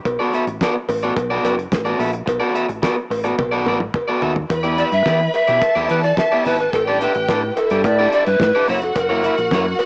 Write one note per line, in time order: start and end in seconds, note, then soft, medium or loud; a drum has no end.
0.05 0.16 B1 medium
0.05 muted clean electric guitar stroke soft
0.05 kick loud
0.05 closed hi-hat medium
0.05 cowbell medium
0.19 0.32 B3 medium
0.19 0.33 F#4 medium
0.19 0.33 A4 medium
0.19 0.32 D5 medium
0.33 0.44 B3 medium
0.33 0.44 F#4 medium
0.33 0.44 A4 medium
0.33 0.44 E5 medium
0.33 closed hi-hat medium
0.47 0.58 A1 medium
0.47 muted clean electric guitar stroke soft
0.47 closed hi-hat medium
0.61 0.74 B3 medium
0.61 0.75 F#4 medium
0.61 0.75 A4 loud
0.61 0.74 D5 loud
0.61 kick medium
0.61 snare medium
0.61 closed hi-hat medium
0.61 cowbell medium
0.75 muted clean electric guitar stroke medium
0.89 1.10 A1 medium
0.89 muted clean electric guitar stroke medium
0.89 open hi-hat medium
0.89 cowbell medium
1.02 1.14 B3 medium
1.02 1.13 F#4 medium
1.02 1.13 A4 medium
1.02 1.13 D5 medium
1.02 closed hi-hat soft
1.16 1.38 B1 loud
1.16 muted clean electric guitar stroke soft
1.16 kick loud
1.16 closed hi-hat medium
1.16 cowbell medium
1.30 1.42 B3 medium
1.30 1.42 F#4 medium
1.30 1.43 A4 medium
1.30 1.43 D5 medium
1.43 1.65 F#1 medium
1.43 1.54 B3 medium
1.43 1.54 F#4 medium
1.43 1.55 A4 medium
1.43 1.55 D5 medium
1.43 closed hi-hat medium
1.43 cowbell medium
1.58 muted clean electric guitar stroke soft
1.58 closed hi-hat soft
1.72 1.93 A1 loud
1.72 muted clean electric guitar stroke soft
1.72 kick loud
1.72 snare loud
1.72 closed hi-hat medium
1.72 cowbell medium
1.85 1.97 B3 medium
1.85 1.98 F#4 medium
1.85 1.98 A4 medium
1.85 1.99 D5 medium
1.85 closed hi-hat soft
1.98 2.21 A#1 loud
1.98 2.09 B3 medium
1.98 2.10 F#4 medium
1.98 2.10 A4 medium
1.98 2.10 E5 medium
1.98 open hi-hat medium
2.13 muted clean electric guitar stroke soft
2.13 closed hi-hat soft
2.26 2.38 B1 loud
2.26 muted clean electric guitar stroke soft
2.26 kick loud
2.26 closed hi-hat medium
2.26 cowbell loud
2.40 2.53 B3 medium
2.40 2.53 F#4 medium
2.40 2.54 A4 medium
2.40 2.54 D5 medium
2.54 2.65 B3 medium
2.54 2.65 F#4 medium
2.54 2.65 A4 medium
2.54 2.66 E5 medium
2.54 closed hi-hat medium
2.68 2.80 A1 medium
2.68 muted clean electric guitar stroke medium
2.68 closed hi-hat soft
2.82 2.96 B3 medium
2.82 2.96 F#4 medium
2.82 2.95 A4 medium
2.82 2.95 D5 medium
2.82 kick loud
2.82 snare medium
2.82 closed hi-hat medium
2.82 cowbell medium
2.96 muted clean electric guitar stroke soft
3.10 3.32 A1 medium
3.10 muted clean electric guitar stroke soft
3.10 open hi-hat medium
3.10 cowbell medium
3.24 3.35 B3 medium
3.24 3.35 F#4 medium
3.24 3.35 A4 medium
3.24 3.35 D5 medium
3.24 closed hi-hat soft
3.38 3.66 B1 medium
3.38 muted clean electric guitar stroke soft
3.38 kick loud
3.38 high tom medium
3.38 cowbell medium
3.51 3.66 B3 medium
3.51 3.66 F#4 medium
3.51 3.66 A4 medium
3.51 3.65 D5 medium
3.66 3.88 A1 medium
3.66 3.77 B3 medium
3.66 3.77 F#4 medium
3.66 3.78 A4 medium
3.66 3.78 D5 medium
3.66 mid tom medium
3.66 cowbell medium
3.80 muted clean electric guitar stroke soft
3.80 mid tom medium
3.94 muted clean electric guitar stroke soft
3.94 kick loud
3.94 mid tom medium
3.94 cowbell medium
4.08 4.20 B3 medium
4.08 4.21 F#4 medium
4.08 4.22 A4 medium
4.08 4.21 D5 medium
4.21 4.44 D#2 loud
4.21 4.32 B3 medium
4.21 4.33 F#4 medium
4.21 4.33 A4 medium
4.21 4.33 E5 medium
4.21 floor tom medium
4.35 muted clean electric guitar stroke medium
4.35 floor tom medium
4.50 4.82 E2 loud
4.50 5.60 B4 medium
4.50 5.60 B5 medium
4.50 muted clean electric guitar stroke soft
4.50 kick loud
4.50 closed hi-hat medium
4.50 cowbell medium
4.63 4.77 B3 medium
4.63 4.77 E4 medium
4.63 4.77 G4 medium
4.63 4.77 D5 medium
4.63 closed hi-hat soft
4.78 4.88 B3 medium
4.78 4.89 E4 medium
4.78 4.89 G4 medium
4.78 4.84 D5 medium
4.78 4.89 E5 medium
4.78 closed hi-hat medium
4.91 5.03 G2 medium
4.91 5.31 E5 loud
4.91 muted clean electric guitar stroke soft
4.91 closed hi-hat soft
5.06 5.27 E3 loud
5.06 5.19 B3 medium
5.06 5.20 E4 medium
5.06 5.20 G4 medium
5.06 5.19 D5 medium
5.06 kick medium
5.06 snare medium
5.06 cowbell medium
5.20 muted clean electric guitar stroke soft
5.20 closed hi-hat soft
5.34 5.91 E5 loud
5.34 muted clean electric guitar stroke soft
5.34 closed hi-hat medium
5.34 cowbell medium
5.47 5.59 B2 medium
5.47 5.59 B3 medium
5.47 5.58 E4 medium
5.47 5.58 G4 medium
5.47 5.58 D5 medium
5.47 closed hi-hat soft
5.61 6.71 A4 medium
5.61 6.71 A5 medium
5.61 muted clean electric guitar stroke soft
5.61 kick loud
5.61 closed hi-hat medium
5.61 cowbell medium
5.75 5.86 E2 loud
5.75 5.89 B3 medium
5.75 5.89 E4 medium
5.75 5.89 G4 medium
5.75 5.88 D5 medium
5.75 snare soft
5.89 6.11 E3 loud
5.89 6.00 B3 medium
5.89 6.00 E4 medium
5.89 6.00 G4 medium
5.89 6.05 B4 loud
5.89 6.01 D5 medium
5.89 closed hi-hat medium
6.03 6.19 D5 loud
6.03 muted clean electric guitar stroke soft
6.03 closed hi-hat soft
6.17 6.47 E5 loud
6.17 muted clean electric guitar stroke soft
6.17 kick loud
6.17 snare loud
6.17 cowbell medium
6.31 6.44 B3 medium
6.31 6.45 E4 medium
6.31 6.45 G4 medium
6.31 6.45 D5 medium
6.31 closed hi-hat soft
6.45 6.67 G#1 medium
6.45 6.56 B3 medium
6.45 6.56 E4 medium
6.45 6.56 G4 medium
6.45 6.59 B4 medium
6.45 6.56 E5 medium
6.45 open hi-hat medium
6.59 6.72 B4 medium
6.59 muted clean electric guitar stroke soft
6.59 closed hi-hat soft
6.73 7.05 A1 medium
6.73 7.55 G4 medium
6.73 6.86 A4 medium
6.73 7.55 G5 medium
6.73 muted clean electric guitar stroke soft
6.73 kick loud
6.73 closed hi-hat medium
6.73 cowbell medium
6.87 7.00 D4 medium
6.87 7.01 G4 medium
6.87 7.01 A4 medium
6.87 7.02 D5 medium
6.87 7.00 D5 medium
7.01 7.11 D4 medium
7.01 7.12 G4 medium
7.01 7.12 A4 medium
7.01 7.56 B4 medium
7.01 7.12 E5 medium
7.01 closed hi-hat medium
7.14 7.26 A1 loud
7.14 muted clean electric guitar stroke soft
7.14 closed hi-hat soft
7.28 7.50 A2 loud
7.28 7.42 D4 medium
7.28 7.42 G4 medium
7.28 7.42 A4 medium
7.28 7.41 D5 medium
7.28 kick loud
7.28 snare medium
7.28 cowbell medium
7.42 muted clean electric guitar stroke medium
7.56 8.66 E4 medium
7.56 7.87 A4 medium
7.56 8.65 E5 medium
7.56 muted clean electric guitar stroke soft
7.56 closed hi-hat medium
7.56 cowbell medium
7.70 7.84 G2 medium
7.70 7.82 D4 medium
7.70 7.81 G4 medium
7.70 7.81 A4 medium
7.70 7.81 D5 medium
7.70 closed hi-hat soft
7.84 8.06 A2 loud
7.84 8.12 D5 medium
7.84 muted clean electric guitar stroke soft
7.84 kick loud
7.84 closed hi-hat medium
7.84 cowbell medium
7.99 8.11 D4 medium
7.99 8.12 G4 medium
7.99 8.12 A4 medium
7.99 8.12 D5 medium
8.13 8.23 D4 medium
8.13 8.23 G4 medium
8.13 8.23 A4 medium
8.13 8.28 D5 medium
8.13 8.24 D5 medium
8.13 closed hi-hat medium
8.26 8.37 G2 medium
8.26 8.71 B4 loud
8.26 muted clean electric guitar stroke medium
8.26 closed hi-hat soft
8.40 8.51 A2 loud
8.40 muted clean electric guitar stroke soft
8.40 kick loud
8.40 snare loud
8.40 cowbell medium
8.55 8.67 D4 medium
8.55 8.68 G4 medium
8.55 8.68 A4 medium
8.55 8.68 D5 medium
8.55 closed hi-hat soft
8.67 8.83 F#1 medium
8.67 8.78 A#3 medium
8.67 8.79 E4 medium
8.67 9.86 F#4 medium
8.67 8.79 F#4 medium
8.67 8.84 C#5 medium
8.67 8.79 E5 medium
8.67 9.86 F#5 loud
8.67 open hi-hat medium
8.82 8.93 F1 medium
8.82 8.98 A4 medium
8.82 muted clean electric guitar stroke soft
8.82 closed hi-hat soft
8.95 9.28 F#1 medium
8.95 9.80 A#4 medium
8.95 muted clean electric guitar stroke soft
8.95 kick loud
8.95 closed hi-hat medium
8.95 cowbell medium
9.09 9.22 A#3 medium
9.09 9.23 E4 medium
9.09 9.23 F#4 medium
9.09 9.23 C#5 medium
9.23 9.34 A#3 medium
9.23 9.34 E4 medium
9.23 9.34 F#4 medium
9.23 9.35 E5 medium
9.23 closed hi-hat medium
9.38 9.49 A#1 medium
9.38 muted clean electric guitar stroke soft
9.38 closed hi-hat soft
9.51 9.73 F#2 loud
9.51 9.65 A#3 medium
9.51 9.65 E4 loud
9.51 9.65 F#4 loud
9.51 9.65 C#5 loud
9.51 kick medium
9.51 snare medium
9.51 cowbell medium
9.66 muted clean electric guitar stroke medium
9.79 muted clean electric guitar stroke soft
9.79 closed hi-hat medium
9.79 cowbell medium